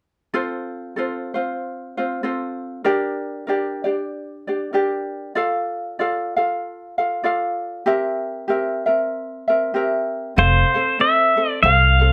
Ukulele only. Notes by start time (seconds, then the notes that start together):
0.34 C4 F4 A4 C5
0.96 C4 F4 A4 C5
1.34 C4 F4 C5
1.97 C4 F4 C5
2.23 C4 F4 A4 C5
2.84 D4 G4 A#4 D5
3.47 D4 G4 A#4 D5
3.84 D4 G4 D5
4.47 D4 G4 D5
4.73 D4 G4 A#4 D5
5.35 F4 A4 D5 F5
5.99 F4 A4 D5 F5
6.36 F4 A4 F5
6.98 F4 A4 F5
7.24 F4 A4 D5 F5
7.86 C4 G4 A#4 E5
8.48 C4 G4 A#4 E5
8.86 C4 A#4 E5
9.48 C4 A#4 E5
9.74 C4 G4 A#4 E5
10.36 C4 A4 C5 F5
10.74 C4 A4 F5
11.00 C4 A4 C5
11.37 C4 A4
11.63 C4 A4 C5 F5
11.99 C4 A4 F5